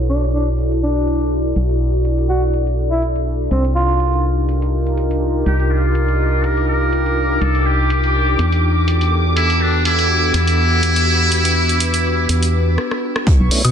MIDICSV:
0, 0, Header, 1, 8, 480
1, 0, Start_track
1, 0, Tempo, 487805
1, 1536, Time_signature, 4, 2, 24, 8
1, 13497, End_track
2, 0, Start_track
2, 0, Title_t, "Violin section"
2, 0, Program_c, 0, 48
2, 5374, Note_on_c, 0, 86, 74
2, 12575, Note_off_c, 0, 86, 0
2, 13055, Note_on_c, 0, 85, 84
2, 13497, Note_off_c, 0, 85, 0
2, 13497, End_track
3, 0, Start_track
3, 0, Title_t, "Ambient pad"
3, 0, Program_c, 1, 92
3, 0, Note_on_c, 1, 62, 78
3, 0, Note_on_c, 1, 64, 71
3, 0, Note_on_c, 1, 66, 72
3, 0, Note_on_c, 1, 69, 70
3, 0, Note_on_c, 1, 73, 85
3, 546, Note_off_c, 1, 73, 0
3, 576, Note_on_c, 1, 74, 84
3, 3416, Note_off_c, 1, 64, 0
3, 3416, Note_off_c, 1, 66, 0
3, 3416, Note_off_c, 1, 69, 0
3, 3427, Note_off_c, 1, 74, 0
3, 3456, Note_on_c, 1, 63, 73
3, 3456, Note_on_c, 1, 65, 72
3, 3456, Note_on_c, 1, 67, 70
3, 3456, Note_on_c, 1, 70, 85
3, 8216, Note_off_c, 1, 63, 0
3, 8216, Note_off_c, 1, 65, 0
3, 8216, Note_off_c, 1, 70, 0
3, 8255, Note_on_c, 1, 69, 84
3, 8256, Note_on_c, 1, 59, 79
3, 8256, Note_on_c, 1, 66, 71
3, 10156, Note_off_c, 1, 69, 0
3, 10175, Note_on_c, 1, 71, 87
3, 13016, Note_off_c, 1, 59, 0
3, 13016, Note_off_c, 1, 62, 0
3, 13016, Note_off_c, 1, 66, 0
3, 13016, Note_off_c, 1, 67, 0
3, 13026, Note_off_c, 1, 71, 0
3, 13056, Note_on_c, 1, 57, 83
3, 13056, Note_on_c, 1, 64, 75
3, 13057, Note_on_c, 1, 59, 76
3, 13057, Note_on_c, 1, 66, 75
3, 13057, Note_on_c, 1, 73, 92
3, 13497, Note_off_c, 1, 57, 0
3, 13497, Note_off_c, 1, 59, 0
3, 13497, Note_off_c, 1, 64, 0
3, 13497, Note_off_c, 1, 66, 0
3, 13497, Note_off_c, 1, 73, 0
3, 13497, End_track
4, 0, Start_track
4, 0, Title_t, "Muted trumpet"
4, 0, Program_c, 2, 59
4, 5375, Note_on_c, 2, 67, 91
4, 5615, Note_on_c, 2, 65, 92
4, 5630, Note_off_c, 2, 67, 0
4, 6336, Note_on_c, 2, 70, 101
4, 6351, Note_off_c, 2, 65, 0
4, 6570, Note_off_c, 2, 70, 0
4, 6576, Note_on_c, 2, 70, 107
4, 7297, Note_on_c, 2, 69, 99
4, 7312, Note_off_c, 2, 70, 0
4, 7537, Note_on_c, 2, 67, 87
4, 7551, Note_off_c, 2, 69, 0
4, 8496, Note_off_c, 2, 67, 0
4, 9217, Note_on_c, 2, 64, 109
4, 9456, Note_on_c, 2, 62, 95
4, 9471, Note_off_c, 2, 64, 0
4, 9691, Note_off_c, 2, 62, 0
4, 9697, Note_on_c, 2, 64, 103
4, 10143, Note_off_c, 2, 64, 0
4, 10176, Note_on_c, 2, 64, 103
4, 12537, Note_off_c, 2, 64, 0
4, 13497, End_track
5, 0, Start_track
5, 0, Title_t, "Alto saxophone"
5, 0, Program_c, 3, 65
5, 94, Note_on_c, 3, 62, 85
5, 229, Note_off_c, 3, 62, 0
5, 335, Note_on_c, 3, 62, 80
5, 470, Note_off_c, 3, 62, 0
5, 816, Note_on_c, 3, 62, 85
5, 1493, Note_off_c, 3, 62, 0
5, 2254, Note_on_c, 3, 66, 81
5, 2390, Note_off_c, 3, 66, 0
5, 2867, Note_on_c, 3, 64, 82
5, 2979, Note_off_c, 3, 64, 0
5, 3455, Note_on_c, 3, 60, 82
5, 3590, Note_off_c, 3, 60, 0
5, 3694, Note_on_c, 3, 65, 86
5, 4175, Note_off_c, 3, 65, 0
5, 13497, End_track
6, 0, Start_track
6, 0, Title_t, "Tonewheel organ"
6, 0, Program_c, 4, 16
6, 13294, Note_on_c, 4, 57, 73
6, 13295, Note_on_c, 4, 59, 67
6, 13296, Note_on_c, 4, 61, 65
6, 13296, Note_on_c, 4, 62, 67
6, 13297, Note_on_c, 4, 64, 83
6, 13401, Note_off_c, 4, 57, 0
6, 13402, Note_off_c, 4, 59, 0
6, 13402, Note_off_c, 4, 61, 0
6, 13402, Note_off_c, 4, 62, 0
6, 13403, Note_off_c, 4, 64, 0
6, 13497, End_track
7, 0, Start_track
7, 0, Title_t, "FM bass"
7, 0, Program_c, 5, 39
7, 0, Note_on_c, 5, 35, 84
7, 1514, Note_off_c, 5, 35, 0
7, 1536, Note_on_c, 5, 35, 85
7, 3434, Note_off_c, 5, 35, 0
7, 3455, Note_on_c, 5, 36, 87
7, 5354, Note_off_c, 5, 36, 0
7, 5375, Note_on_c, 5, 36, 85
7, 7274, Note_off_c, 5, 36, 0
7, 7295, Note_on_c, 5, 36, 85
7, 8234, Note_off_c, 5, 36, 0
7, 8255, Note_on_c, 5, 40, 87
7, 10154, Note_off_c, 5, 40, 0
7, 10176, Note_on_c, 5, 40, 83
7, 12074, Note_off_c, 5, 40, 0
7, 12096, Note_on_c, 5, 40, 87
7, 12576, Note_off_c, 5, 40, 0
7, 13188, Note_on_c, 5, 35, 98
7, 13266, Note_off_c, 5, 35, 0
7, 13428, Note_on_c, 5, 47, 90
7, 13497, Note_off_c, 5, 47, 0
7, 13497, End_track
8, 0, Start_track
8, 0, Title_t, "Drums"
8, 95, Note_on_c, 9, 42, 72
8, 194, Note_off_c, 9, 42, 0
8, 227, Note_on_c, 9, 42, 46
8, 326, Note_off_c, 9, 42, 0
8, 575, Note_on_c, 9, 42, 71
8, 674, Note_off_c, 9, 42, 0
8, 707, Note_on_c, 9, 42, 47
8, 805, Note_off_c, 9, 42, 0
8, 1055, Note_on_c, 9, 42, 72
8, 1154, Note_off_c, 9, 42, 0
8, 1187, Note_on_c, 9, 42, 49
8, 1285, Note_off_c, 9, 42, 0
8, 1536, Note_on_c, 9, 42, 67
8, 1634, Note_off_c, 9, 42, 0
8, 1667, Note_on_c, 9, 42, 45
8, 1766, Note_off_c, 9, 42, 0
8, 2016, Note_on_c, 9, 42, 71
8, 2114, Note_off_c, 9, 42, 0
8, 2148, Note_on_c, 9, 42, 44
8, 2246, Note_off_c, 9, 42, 0
8, 2495, Note_on_c, 9, 42, 68
8, 2594, Note_off_c, 9, 42, 0
8, 2627, Note_on_c, 9, 42, 46
8, 2725, Note_off_c, 9, 42, 0
8, 2975, Note_on_c, 9, 42, 72
8, 3074, Note_off_c, 9, 42, 0
8, 3107, Note_on_c, 9, 42, 45
8, 3206, Note_off_c, 9, 42, 0
8, 3456, Note_on_c, 9, 42, 67
8, 3554, Note_off_c, 9, 42, 0
8, 3587, Note_on_c, 9, 42, 46
8, 3686, Note_off_c, 9, 42, 0
8, 3936, Note_on_c, 9, 42, 69
8, 4034, Note_off_c, 9, 42, 0
8, 4067, Note_on_c, 9, 42, 43
8, 4165, Note_off_c, 9, 42, 0
8, 4416, Note_on_c, 9, 42, 68
8, 4514, Note_off_c, 9, 42, 0
8, 4548, Note_on_c, 9, 42, 45
8, 4646, Note_off_c, 9, 42, 0
8, 4787, Note_on_c, 9, 42, 32
8, 4886, Note_off_c, 9, 42, 0
8, 4895, Note_on_c, 9, 42, 66
8, 4994, Note_off_c, 9, 42, 0
8, 5027, Note_on_c, 9, 42, 45
8, 5126, Note_off_c, 9, 42, 0
8, 5375, Note_on_c, 9, 42, 67
8, 5474, Note_off_c, 9, 42, 0
8, 5507, Note_on_c, 9, 42, 45
8, 5606, Note_off_c, 9, 42, 0
8, 5855, Note_on_c, 9, 42, 70
8, 5954, Note_off_c, 9, 42, 0
8, 5987, Note_on_c, 9, 42, 43
8, 6085, Note_off_c, 9, 42, 0
8, 6335, Note_on_c, 9, 42, 70
8, 6434, Note_off_c, 9, 42, 0
8, 6467, Note_on_c, 9, 42, 45
8, 6566, Note_off_c, 9, 42, 0
8, 6815, Note_on_c, 9, 42, 70
8, 6914, Note_off_c, 9, 42, 0
8, 6948, Note_on_c, 9, 42, 45
8, 7046, Note_off_c, 9, 42, 0
8, 7296, Note_on_c, 9, 42, 70
8, 7394, Note_off_c, 9, 42, 0
8, 7428, Note_on_c, 9, 42, 46
8, 7526, Note_off_c, 9, 42, 0
8, 7776, Note_on_c, 9, 42, 73
8, 7874, Note_off_c, 9, 42, 0
8, 7908, Note_on_c, 9, 42, 46
8, 8006, Note_off_c, 9, 42, 0
8, 8256, Note_on_c, 9, 42, 72
8, 8354, Note_off_c, 9, 42, 0
8, 8387, Note_on_c, 9, 42, 48
8, 8486, Note_off_c, 9, 42, 0
8, 8736, Note_on_c, 9, 42, 70
8, 8834, Note_off_c, 9, 42, 0
8, 8867, Note_on_c, 9, 42, 49
8, 8966, Note_off_c, 9, 42, 0
8, 9216, Note_on_c, 9, 42, 74
8, 9314, Note_off_c, 9, 42, 0
8, 9348, Note_on_c, 9, 42, 50
8, 9446, Note_off_c, 9, 42, 0
8, 9696, Note_on_c, 9, 42, 74
8, 9794, Note_off_c, 9, 42, 0
8, 9827, Note_on_c, 9, 42, 49
8, 9925, Note_off_c, 9, 42, 0
8, 10176, Note_on_c, 9, 42, 74
8, 10274, Note_off_c, 9, 42, 0
8, 10307, Note_on_c, 9, 42, 51
8, 10406, Note_off_c, 9, 42, 0
8, 10656, Note_on_c, 9, 42, 75
8, 10754, Note_off_c, 9, 42, 0
8, 10787, Note_on_c, 9, 42, 51
8, 10885, Note_off_c, 9, 42, 0
8, 11135, Note_on_c, 9, 42, 77
8, 11234, Note_off_c, 9, 42, 0
8, 11267, Note_on_c, 9, 42, 49
8, 11365, Note_off_c, 9, 42, 0
8, 11506, Note_on_c, 9, 42, 36
8, 11605, Note_off_c, 9, 42, 0
8, 11615, Note_on_c, 9, 42, 77
8, 11713, Note_off_c, 9, 42, 0
8, 11747, Note_on_c, 9, 42, 49
8, 11845, Note_off_c, 9, 42, 0
8, 12095, Note_on_c, 9, 42, 76
8, 12193, Note_off_c, 9, 42, 0
8, 12227, Note_on_c, 9, 42, 50
8, 12325, Note_off_c, 9, 42, 0
8, 12575, Note_on_c, 9, 37, 58
8, 12674, Note_off_c, 9, 37, 0
8, 12707, Note_on_c, 9, 37, 59
8, 12806, Note_off_c, 9, 37, 0
8, 12947, Note_on_c, 9, 37, 78
8, 13046, Note_off_c, 9, 37, 0
8, 13056, Note_on_c, 9, 36, 120
8, 13059, Note_on_c, 9, 42, 91
8, 13154, Note_off_c, 9, 36, 0
8, 13157, Note_off_c, 9, 42, 0
8, 13295, Note_on_c, 9, 46, 111
8, 13299, Note_on_c, 9, 42, 76
8, 13394, Note_off_c, 9, 46, 0
8, 13397, Note_off_c, 9, 42, 0
8, 13428, Note_on_c, 9, 42, 67
8, 13428, Note_on_c, 9, 76, 62
8, 13497, Note_off_c, 9, 42, 0
8, 13497, Note_off_c, 9, 76, 0
8, 13497, End_track
0, 0, End_of_file